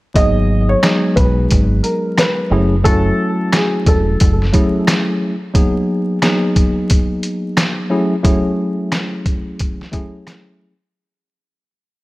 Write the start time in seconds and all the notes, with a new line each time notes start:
0.14 G#1 F#3 A#3 B3 D#4 G#4 D#5, kick, closed hi-hat
0.69 C#5
0.82 F#3 G#3 B3 D#4 G#4, cross-stick, snare, closed hi-hat
1.16 B1 B4, kick, closed hi-hat
1.50 G#1, kick, closed hi-hat
1.83 A#4, closed hi-hat
2.18 B4, cross-stick, snare, closed hi-hat
2.50 F#1 F#3 A3 C#4 E4 G#4
2.84 F#3 A3 C#4 E4 F#4 A4, kick, closed hi-hat
3.52 G#4, cross-stick, snare, closed hi-hat
3.87 E1 A4, kick, closed hi-hat
4.20 F#1, kick, closed hi-hat
4.42 snare
4.52 F#3 A3 C#4 E4 G#4, kick, closed hi-hat
4.87 cross-stick, snare, closed hi-hat
5.54 F#3 A#3 B3 D#4 G#4, kick, closed hi-hat
6.22 F#3 A#3 B3 D#4 G#4, cross-stick, snare, closed hi-hat
6.56 kick, closed hi-hat
6.90 kick, closed hi-hat
7.23 closed hi-hat
7.57 cross-stick, snare, closed hi-hat
7.90 F#3 A3 C#4 E4 G#4
8.23 F#3 A3 C#4 E4 G#4, kick, closed hi-hat
8.92 cross-stick, snare, closed hi-hat
9.26 kick, closed hi-hat
9.59 kick, closed hi-hat
9.81 snare
9.92 F#3 A3 C#4 E4 G#4, kick, closed hi-hat
10.27 cross-stick, snare, closed hi-hat